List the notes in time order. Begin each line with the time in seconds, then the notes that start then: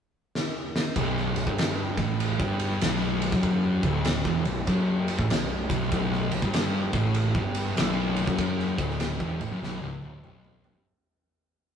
0.35 snare
0.76 snare
0.96 B0 B1, kick, ride
1.17 snare
1.36 B0 B1, ride
1.47 G1 G2, kick
1.58 snare, ride
1.97 A1 A2, kick, ride
2.20 ride
2.39 G1 G2, kick
2.60 ride
2.81 B0 B1, snare, ride
3.22 ride
3.32 F#1 F#2, kick, snare
3.43 kick, ride
3.83 D1 D2, kick, ride
4.05 snare, ride
4.25 E1 E2, kick
4.45 B0 B1, ride
4.67 F#1 F#2, kick, ride
5.08 ride
5.19 A1 A2, kick
5.30 B0 B1, snare, ride
5.69 B0 B1, kick, ride
5.91 B0 B1, kick, ride
6.13 snare
6.31 B0 B1, ride
6.42 G1 G2, kick
6.53 snare, ride
6.93 A1 A2, kick, ride
7.14 ride
7.35 G1 G2, kick
7.55 ride
7.77 B0 B1, snare, ride
8.16 ride
8.27 F#1 F#2, kick
8.38 kick, ride
8.59 snare
8.78 D1 D2, kick, ride
8.90 snare
9.00 snare, ride
9.20 E1 E2, kick
9.40 A1 A2, ride
9.51 F#1 F#2
9.62 B0 B1, snare
9.82 C#1 C#2
10.02 D1 D2, high tom
10.24 B0 B1, mid tom
10.44 mid tom
10.64 floor tom
10.74 G1 G2, floor tom